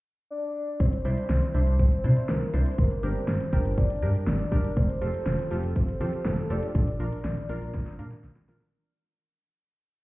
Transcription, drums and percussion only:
0.80 kick, closed hi-hat
0.93 closed hi-hat
1.05 closed hi-hat
1.17 closed hi-hat
1.30 snare, closed hi-hat
1.42 closed hi-hat
1.54 closed hi-hat
1.67 closed hi-hat
1.79 kick, closed hi-hat
1.92 closed hi-hat
2.04 closed hi-hat
2.17 closed hi-hat
2.29 snare, closed hi-hat
2.41 closed hi-hat
2.54 closed hi-hat
2.66 closed hi-hat
2.78 kick, closed hi-hat
2.91 closed hi-hat
3.03 closed hi-hat
3.16 closed hi-hat
3.28 snare, closed hi-hat
3.41 closed hi-hat
3.53 kick, closed hi-hat
3.65 closed hi-hat
3.78 kick, closed hi-hat
3.90 closed hi-hat
4.02 closed hi-hat
4.15 closed hi-hat
4.27 snare, closed hi-hat
4.40 closed hi-hat
4.52 kick, closed hi-hat
4.64 closed hi-hat
4.77 kick, closed hi-hat
4.89 closed hi-hat
5.02 closed hi-hat
5.14 closed hi-hat
5.26 snare, closed hi-hat
5.39 closed hi-hat
5.51 closed hi-hat
5.63 closed hi-hat
5.76 kick, closed hi-hat
5.88 closed hi-hat
6.01 closed hi-hat
6.13 closed hi-hat
6.25 snare, closed hi-hat
6.38 closed hi-hat
6.50 closed hi-hat
6.63 closed hi-hat
6.75 kick, closed hi-hat
6.88 closed hi-hat
7.00 closed hi-hat
7.12 closed hi-hat
7.25 snare, closed hi-hat
7.37 closed hi-hat
7.49 closed hi-hat
7.62 closed hi-hat
7.74 kick, snare, closed hi-hat
7.87 snare, closed hi-hat
7.99 closed hi-hat
8.11 snare, closed hi-hat
8.24 snare, closed hi-hat
8.36 snare, closed hi-hat
8.48 snare, closed hi-hat
8.61 snare

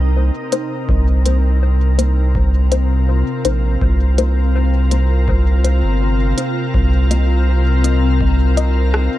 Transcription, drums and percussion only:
0.52 closed hi-hat
0.89 kick
1.26 closed hi-hat
1.99 closed hi-hat
2.35 kick
2.72 closed hi-hat
3.45 closed hi-hat
3.82 kick
4.18 closed hi-hat
4.91 closed hi-hat
5.28 kick
5.65 closed hi-hat
6.38 closed hi-hat
6.74 kick
7.11 closed hi-hat
7.84 closed hi-hat
8.21 kick
8.57 closed hi-hat
8.94 cross-stick

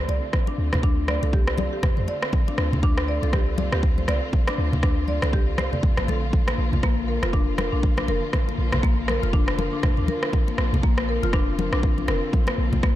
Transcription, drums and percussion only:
0.09 muted conga
0.33 kick, cross-stick, high conga
0.47 muted conga
0.73 cross-stick, low conga
0.83 kick, muted conga
1.08 cross-stick, high conga
1.23 muted conga
1.33 kick
1.48 cross-stick
1.58 muted conga, high conga
1.83 kick, cross-stick, low conga
1.97 high conga
2.08 muted conga, high conga
2.23 cross-stick
2.33 kick, high conga
2.48 muted conga
2.58 cross-stick
2.73 low conga
2.83 kick, muted conga
2.98 cross-stick
3.23 muted conga
3.33 kick, cross-stick, high conga
3.58 muted conga, high conga
3.72 cross-stick
3.83 kick
3.98 high conga
4.08 cross-stick, muted conga
4.33 kick, high conga
4.48 cross-stick, muted conga
4.73 low conga
4.83 kick, cross-stick, muted conga
5.08 high conga
5.22 cross-stick, muted conga
5.33 kick
5.58 cross-stick, muted conga, high conga
5.73 low conga
5.83 kick, low conga
5.97 cross-stick, high conga
6.08 muted conga, high conga
6.33 kick, high conga
6.48 cross-stick, muted conga
6.73 low conga
6.83 kick, cross-stick, muted conga
7.23 cross-stick, muted conga
7.33 kick, high conga
7.58 cross-stick, muted conga, high conga
7.83 kick
7.97 cross-stick, high conga
8.08 muted conga
8.33 kick, cross-stick, high conga
8.49 muted conga
8.72 cross-stick, low conga
8.83 kick, muted conga
9.08 cross-stick, high conga
9.23 muted conga
9.33 kick
9.48 cross-stick
9.59 muted conga, high conga
9.83 kick, cross-stick, low conga
9.97 high conga
10.08 muted conga, high conga
10.23 cross-stick
10.33 kick, high conga
10.48 muted conga
10.58 cross-stick
10.74 low conga
10.83 kick, muted conga
10.98 cross-stick
11.23 muted conga
11.33 kick, cross-stick, high conga
11.59 muted conga, high conga
11.73 cross-stick
11.83 kick
11.98 high conga
12.08 cross-stick, muted conga
12.33 kick, high conga
12.47 cross-stick, muted conga
12.73 high conga, low conga
12.83 kick, cross-stick, muted conga

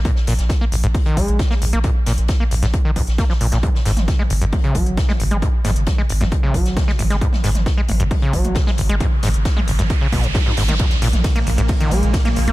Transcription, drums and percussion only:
0.05 kick, closed hi-hat
0.16 snare
0.27 snare, closed hi-hat, open hi-hat
0.38 snare, closed hi-hat
0.49 kick, snare, closed hi-hat
0.72 closed hi-hat, open hi-hat
0.83 closed hi-hat
0.95 kick, closed hi-hat, open hi-hat
1.06 closed hi-hat
1.17 kick, closed hi-hat, open hi-hat
1.28 closed hi-hat
1.39 kick, snare, closed hi-hat
1.50 snare
1.62 closed hi-hat, open hi-hat
1.73 closed hi-hat
1.84 kick, closed hi-hat
2.06 snare, closed hi-hat, open hi-hat
2.18 closed hi-hat
2.28 kick, snare, closed hi-hat
2.51 closed hi-hat, open hi-hat
2.63 snare, closed hi-hat
2.73 kick, closed hi-hat
2.96 kick, closed hi-hat, open hi-hat
3.07 snare, closed hi-hat
3.18 kick, snare, closed hi-hat
3.29 snare
3.41 closed hi-hat, open hi-hat
3.52 snare, closed hi-hat
3.63 kick, closed hi-hat, mid tom
3.75 snare
3.85 snare, closed hi-hat, open hi-hat
3.97 snare, closed hi-hat, mid tom
4.08 kick, snare, closed hi-hat
4.19 mid tom
4.30 closed hi-hat, open hi-hat
4.42 closed hi-hat
4.52 kick, closed hi-hat, mid tom, open hi-hat
4.64 closed hi-hat
4.74 kick, closed hi-hat, mid tom, open hi-hat
4.86 closed hi-hat
4.97 kick, snare, closed hi-hat
5.08 snare, mid tom
5.20 closed hi-hat, open hi-hat
5.31 closed hi-hat, mid tom
5.42 kick, closed hi-hat
5.64 snare, closed hi-hat, mid tom, open hi-hat
5.76 closed hi-hat
5.86 kick, snare, closed hi-hat, mid tom
6.09 closed hi-hat, open hi-hat
6.21 snare, closed hi-hat, mid tom
6.32 kick, closed hi-hat
6.43 mid tom
6.54 kick, closed hi-hat, open hi-hat
6.65 snare, closed hi-hat
6.77 kick, snare, closed hi-hat, mid tom
6.88 snare
6.99 closed hi-hat, mid tom, open hi-hat
7.10 snare, closed hi-hat
7.21 kick, closed hi-hat
7.33 snare, mid tom
7.44 snare, closed hi-hat, open hi-hat
7.54 snare, closed hi-hat, mid tom
7.66 kick, snare, closed hi-hat
7.88 closed hi-hat, mid tom, open hi-hat
8.00 closed hi-hat
8.11 kick, closed hi-hat, mid tom, open hi-hat
8.22 closed hi-hat
8.33 kick, closed hi-hat, open hi-hat
8.45 closed hi-hat, mid tom
8.55 kick, snare, closed hi-hat
8.67 snare, mid tom
8.78 closed hi-hat, open hi-hat
8.89 closed hi-hat
9.00 kick, closed hi-hat, mid tom
9.23 snare, closed hi-hat, mid tom, open hi-hat
9.34 closed hi-hat
9.45 kick, snare, closed hi-hat
9.57 mid tom
9.68 closed hi-hat, open hi-hat
9.79 snare, closed hi-hat, mid tom
9.90 kick, closed hi-hat
10.12 kick, mid tom, open hi-hat
10.23 closed hi-hat
10.34 kick, snare, closed hi-hat, mid tom, high tom
10.46 high tom
10.57 snare, closed hi-hat, open hi-hat
10.68 snare, closed hi-hat, mid tom
10.79 kick, closed hi-hat, mid tom, ride
10.91 snare, closed hi-hat
11.02 snare, closed hi-hat, open hi-hat
11.13 snare, closed hi-hat, mid tom
11.24 kick, snare, closed hi-hat, ride
11.36 closed hi-hat, mid tom
11.47 closed hi-hat, open hi-hat
11.58 closed hi-hat
11.68 kick, closed hi-hat, mid tom, open hi-hat, ride
11.80 closed hi-hat
11.91 closed hi-hat, mid tom, open hi-hat
12.03 closed hi-hat
12.13 kick, snare, closed hi-hat, ride
12.25 snare, closed hi-hat, mid tom
12.36 closed hi-hat, open hi-hat
12.48 closed hi-hat, mid tom

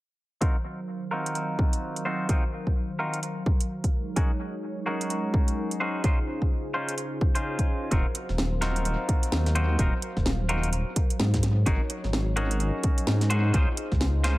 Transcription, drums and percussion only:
0.42 kick, closed hi-hat
1.26 closed hi-hat
1.35 closed hi-hat
1.59 kick
1.73 closed hi-hat
1.96 closed hi-hat
2.29 kick, closed hi-hat
2.67 kick
3.14 closed hi-hat
3.23 closed hi-hat
3.46 kick
3.60 closed hi-hat
3.84 kick, closed hi-hat
4.16 kick, closed hi-hat
5.01 closed hi-hat
5.10 closed hi-hat
5.34 kick
5.48 closed hi-hat
5.71 closed hi-hat
6.04 kick, closed hi-hat
6.42 kick
6.89 closed hi-hat
6.98 closed hi-hat
7.21 kick
7.35 closed hi-hat
7.59 kick, closed hi-hat
7.91 kick, closed hi-hat
8.15 closed hi-hat
8.29 snare
8.38 snare
8.62 snare, closed hi-hat
8.76 closed hi-hat
8.85 closed hi-hat
9.09 kick, closed hi-hat
9.23 closed hi-hat
9.32 snare
9.46 snare, closed hi-hat
9.56 closed hi-hat
9.79 kick, closed hi-hat
10.02 closed hi-hat
10.17 kick, snare
10.26 snare
10.49 closed hi-hat
10.63 closed hi-hat
10.73 closed hi-hat
10.96 kick, closed hi-hat
11.10 closed hi-hat
11.20 snare
11.34 kick, snare, closed hi-hat
11.43 snare, closed hi-hat
11.66 kick, closed hi-hat
11.90 closed hi-hat
12.04 snare
12.13 snare
12.37 closed hi-hat
12.51 closed hi-hat
12.60 closed hi-hat
12.83 kick, closed hi-hat
12.98 closed hi-hat
13.07 snare
13.21 snare, closed hi-hat
13.30 closed hi-hat
13.54 kick, closed hi-hat
13.77 closed hi-hat
13.92 kick, snare
14.01 snare
14.24 snare, closed hi-hat

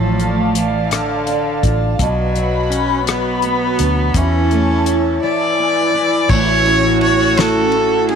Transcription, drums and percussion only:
0.20 closed hi-hat
0.55 closed hi-hat
0.91 cross-stick, closed hi-hat
1.27 closed hi-hat
1.63 kick, closed hi-hat
1.99 kick, closed hi-hat
2.35 closed hi-hat
2.72 closed hi-hat
3.07 cross-stick, closed hi-hat
3.42 closed hi-hat
3.79 closed hi-hat
4.14 kick, closed hi-hat
4.51 closed hi-hat
4.86 closed hi-hat
6.29 kick, crash
6.66 ride
7.01 ride
7.37 snare, ride
7.72 ride
8.09 ride

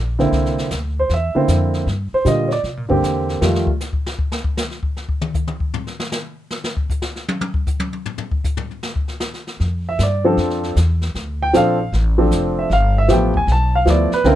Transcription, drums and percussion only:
0.19 snare
0.32 brush sweep, kick, snare
0.45 snare
0.58 snare
0.71 kick, snare, hi-hat pedal
1.09 brush sweep, kick, snare
1.48 snare, hi-hat pedal
1.74 snare
1.87 brush sweep, kick, snare
2.25 kick, snare, hi-hat pedal
2.51 snare
2.64 brush sweep, kick, snare
2.90 kick
3.03 kick, snare, hi-hat pedal
3.29 snare
3.42 snare
3.55 snare
3.67 kick
3.81 snare, hi-hat pedal
3.93 kick
4.06 snare
4.19 kick
4.32 snare
4.44 kick
4.57 snare, hi-hat pedal
4.71 snare
4.83 kick
4.97 snare
5.09 kick
5.21 mid tom
5.34 kick, hi-hat pedal
5.47 mid tom
5.60 kick
5.74 floor tom
5.87 snare
6.00 snare
6.12 snare, hi-hat pedal
6.51 snare
6.64 snare
6.77 kick
6.90 kick, hi-hat pedal
7.02 snare
7.16 snare
7.28 high tom
7.41 high tom
7.54 kick
7.67 kick, hi-hat pedal
7.80 high tom
7.93 high tom
8.06 floor tom
8.18 floor tom
8.32 kick
8.44 kick, hi-hat pedal
8.57 floor tom
8.71 floor tom
8.83 snare
8.96 kick
9.08 snare
9.20 snare, hi-hat pedal
9.34 snare
9.47 snare
9.60 brush sweep, kick, snare
9.99 kick, snare, hi-hat pedal
10.37 brush sweep, kick, snare
10.50 snare
10.63 snare
10.76 kick, snare, hi-hat pedal
11.01 snare
11.15 brush sweep, kick, snare
11.54 kick, snare, hi-hat pedal
11.92 brush sweep, kick, snare
12.31 kick, snare, hi-hat pedal
12.70 brush sweep, kick, snare
13.09 kick, snare, hi-hat pedal
13.34 kick
13.48 brush sweep, snare
13.87 snare, hi-hat pedal
14.12 snare
14.24 brush sweep, kick, snare

